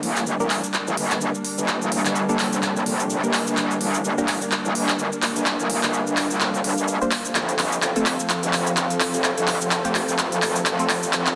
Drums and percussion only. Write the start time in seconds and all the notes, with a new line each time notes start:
0.03 open hi-hat
0.16 clap, shaker
0.27 shaker
0.40 shaker
0.50 clap, open hi-hat
0.64 shaker
0.74 clap, shaker
0.87 shaker
0.97 open hi-hat
1.11 clap, shaker
1.21 shaker
1.35 shaker
1.45 open hi-hat
1.58 shaker
1.68 clap, shaker
1.82 shaker
1.92 open hi-hat
2.05 clap, shaker
2.16 shaker
2.29 shaker
2.39 clap, open hi-hat
2.53 shaker
2.63 clap, shaker
2.76 shaker
2.86 open hi-hat
3.00 shaker
3.10 shaker
3.24 shaker
3.33 clap, open hi-hat
3.47 shaker
3.57 clap, shaker
3.71 shaker
3.81 open hi-hat
3.94 shaker
4.04 shaker
4.18 shaker
4.28 clap, open hi-hat
4.42 shaker
4.52 clap, shaker
4.65 shaker
4.75 open hi-hat
4.89 clap, shaker
4.99 shaker
5.12 shaker
5.22 clap, open hi-hat
5.36 shaker
5.46 clap, shaker
5.60 shaker
5.70 open hi-hat
5.83 clap, shaker
5.93 shaker
6.07 shaker
6.17 clap, open hi-hat
6.31 shaker
6.41 clap, shaker
6.54 shaker
6.64 open hi-hat
6.78 shaker
6.88 shaker
7.01 shaker
7.11 clap, open hi-hat
7.25 shaker
7.35 clap, closed hi-hat, shaker
7.49 closed hi-hat, shaker
7.59 clap, open hi-hat
7.72 shaker
7.82 clap, closed hi-hat, shaker
7.96 closed hi-hat, shaker
8.06 clap, open hi-hat
8.20 shaker
8.30 clap, closed hi-hat, shaker
8.43 closed hi-hat, shaker
8.53 clap, open hi-hat
8.67 closed hi-hat, shaker
8.77 clap, closed hi-hat, shaker
8.90 closed hi-hat, shaker
9.00 clap, open hi-hat
9.14 shaker
9.24 clap, closed hi-hat, shaker
9.38 closed hi-hat, shaker
9.48 clap, open hi-hat
9.61 shaker
9.71 clap, closed hi-hat, shaker
9.85 closed hi-hat, shaker
9.95 clap, open hi-hat
10.09 shaker
10.19 clap, closed hi-hat, shaker
10.32 closed hi-hat, shaker
10.42 clap, open hi-hat
10.56 closed hi-hat, shaker
10.66 clap, closed hi-hat, shaker
10.79 closed hi-hat, shaker
10.89 clap, open hi-hat
11.03 shaker
11.13 clap, closed hi-hat, shaker
11.27 clap, closed hi-hat, shaker